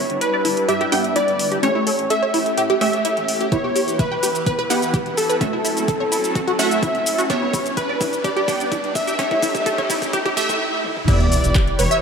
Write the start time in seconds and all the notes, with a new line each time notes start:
Already playing: G3 B3 D4 E4 G4 B4 C#5 E5, riser
0.10 G1, closed hi-hat
0.21 B4, closed hi-hat
0.34 D5
0.45 G1 E4, open hi-hat
0.57 closed hi-hat
0.68 G2 G4 E5, closed hi-hat
0.81 G4, closed hi-hat
0.92 G2 B3 D4 G4 G5, open hi-hat
1.04 closed hi-hat
1.16 E4 D5, closed hi-hat
1.28 G1, closed hi-hat
1.39 open hi-hat
1.52 G4, closed hi-hat
1.63 A1 A3 C#4 G4 C#5, closed hi-hat
1.75 E4
1.87 A4, open hi-hat
1.99 A1, closed hi-hat
2.10 A4 E5, closed hi-hat
2.23 C#5
2.34 A1 E4, open hi-hat
2.46 closed hi-hat
2.58 A2 G4, closed hi-hat
2.70 G4, closed hi-hat
2.81 A1 A3 C#4 G4 E5, open hi-hat
2.93 closed hi-hat
3.05 E4, closed hi-hat
3.17 A1, closed hi-hat
3.28 open hi-hat
3.41 G4, closed hi-hat
3.52 E1 E3 B3 E4 G4 B4 C#5 E5, kick, closed hi-hat, shaker
3.64 G4
3.76 G4, open hi-hat, shaker
3.88 E1, closed hi-hat, shaker
3.99 B4 E5, kick, closed hi-hat, shaker
4.12 G5
4.23 E1 G4, open hi-hat, shaker
4.35 closed hi-hat, shaker
4.46 E2 B4, kick, closed hi-hat, shaker
4.59 B4, closed hi-hat
4.70 E2 B3 E4 G4 F#5, open hi-hat, shaker
4.82 closed hi-hat, shaker
4.94 G4, kick, closed hi-hat, shaker
5.06 E1, closed hi-hat
5.17 A4, open hi-hat, shaker
5.30 B4, closed hi-hat, shaker
5.41 F#1 F#3 A3 C#4 F#4 A4 E5, kick, closed hi-hat, shaker
5.53 E4
5.65 E4, open hi-hat, shaker
5.77 F#1, closed hi-hat, shaker
5.88 A4, kick, closed hi-hat, shaker
6.00 C#5
6.12 F#1 E4, open hi-hat, shaker
6.24 closed hi-hat, shaker
6.35 F#2 F#4, kick, closed hi-hat, shaker
6.47 F#4, closed hi-hat
6.59 F#2 A3 C#4 F#4 E5 F#5, open hi-hat, shaker
6.71 closed hi-hat, shaker
6.83 E4, kick, closed hi-hat, shaker
6.95 F#1, closed hi-hat
7.06 open hi-hat, shaker
7.18 F#4, closed hi-hat, shaker
7.30 G1 G3 B3 D4 G4 B4 C#5 E5, kick, closed hi-hat, shaker
7.42 E4
7.53 E4, kick, open hi-hat, shaker
7.66 G1, closed hi-hat, shaker
7.77 B4, kick, closed hi-hat, shaker
7.89 D5
8.01 G1 E4, kick, open hi-hat, shaker
8.13 closed hi-hat, shaker
8.24 G2 G4 D5, kick, closed hi-hat, shaker
8.37 G4, closed hi-hat
8.48 G2 B3 D4 G4 G5, kick, open hi-hat, shaker
8.60 closed hi-hat, shaker
8.72 E4, kick, closed hi-hat, shaker
8.84 G1, closed hi-hat
8.95 E5, kick, open hi-hat, shaker
9.07 G4, closed hi-hat, shaker
9.19 A1 A3 C#4 G4 C#5, kick, closed hi-hat, shaker
9.31 E4, kick, closed hi-hat
9.43 E4, kick, open hi-hat, shaker
9.55 A1, kick, closed hi-hat, shaker
9.66 A4, kick, closed hi-hat, shaker
9.78 C#5, kick, closed hi-hat
9.90 A1 E4, kick, open hi-hat, shaker
10.02 kick, closed hi-hat, shaker
10.13 A2 G4, kick, closed hi-hat, shaker
10.26 G4, kick, closed hi-hat
10.37 E1 A3 G4 E5, kick, open hi-hat, shaker
10.49 E5, kick, closed hi-hat, shaker
10.84 high tom
10.96 mid tom
11.08 E1 E3 B3 E4 G4 B4 D5 E5, kick, closed hi-hat, crash, sub drop, shaker
11.20 closed hi-hat
11.32 open hi-hat, shaker
11.44 E1, closed hi-hat, shaker
11.55 G4 G5, kick, clap, closed hi-hat, shaker
11.67 closed hi-hat
11.79 E1 B4 C#5 B5, open hi-hat, shaker
11.91 E5 E6, closed hi-hat, shaker